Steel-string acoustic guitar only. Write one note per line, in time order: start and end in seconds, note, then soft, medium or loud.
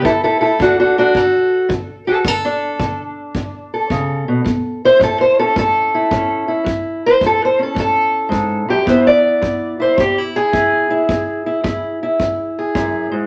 0.02 0.55 D3 medium
0.02 0.11 E4 medium
0.02 0.23 A4 medium
0.24 0.36 E4 medium
0.24 0.40 A4 medium
0.41 0.51 E4 medium
0.41 1.15 A4 medium
0.59 1.11 D3 medium
0.59 0.79 D4 medium
0.59 0.78 F#4 medium
0.80 0.97 D4 medium
0.80 0.97 F#4 medium
0.98 1.16 D4 medium
0.98 1.71 F#4 medium
1.15 1.67 D3 medium
1.15 2.07 A4 medium
1.69 2.21 D3 medium
2.07 2.24 F#4 soft
2.07 2.16 A4 medium
2.07 2.27 C5 medium
2.25 2.77 D3 medium
2.25 3.00 A4 medium
2.45 4.10 D4 medium
2.79 3.32 D3 medium
3.36 3.88 D3 medium
3.74 4.85 A4 soft
3.91 4.28 C#3 medium
4.28 4.44 B2 medium
4.44 4.97 A2 medium
4.85 5.94 E4 soft
4.85 5.03 C5 loud
4.99 5.52 A2 medium
4.99 5.21 A4 medium
5.21 5.39 C5 medium
5.39 6.11 C#4 soft
5.39 5.57 A4 medium
5.56 6.08 A2 medium
5.56 6.50 A4 medium
5.95 6.48 E4 soft
6.11 6.63 A2 medium
6.11 6.65 C#4 soft
6.48 8.70 E4 soft
6.64 7.17 A2 medium
7.06 7.24 C5 medium
7.21 7.73 A2 medium
7.26 7.43 A4 medium
7.45 7.61 C5 medium
7.59 8.86 C#4 soft
7.59 7.79 A4 medium
7.75 8.28 A2 medium
7.80 8.71 A4 medium
8.29 8.68 G#2 medium
8.69 8.85 F#2 medium
8.69 8.88 G4 medium
8.86 9.39 E2 medium
8.86 11.07 B3 soft
8.86 9.79 E4 soft
8.86 9.07 C5 medium
9.07 10.18 D5 medium
9.41 9.94 E2 medium
9.80 10.00 E4 soft
9.80 9.99 C5 medium
9.97 10.50 E2 medium
9.97 10.18 G4 medium
10.18 10.52 E4 medium
10.36 12.57 G#4 medium
10.53 11.05 E2 medium
10.53 10.90 E4 soft
10.90 11.46 E4 soft
11.09 11.61 E2 medium
11.46 11.64 E4 soft
11.64 12.16 E2 medium
11.64 12.02 E4 soft
12.03 13.27 E4 soft
12.22 12.73 E2 medium
12.59 13.27 G#4 soft
12.75 13.11 F#2 medium
13.12 13.27 G#2 medium